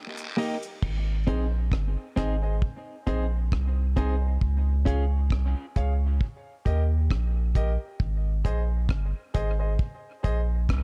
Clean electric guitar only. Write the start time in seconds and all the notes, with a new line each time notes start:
0.37 A#3 D#4 G4
1.27 C4 D#4 G#4
2.16 C4 D#4 G#4
3.07 C4 D#4 G#4
3.97 C4 D#4 G#4
4.85 C#4 F4 G#4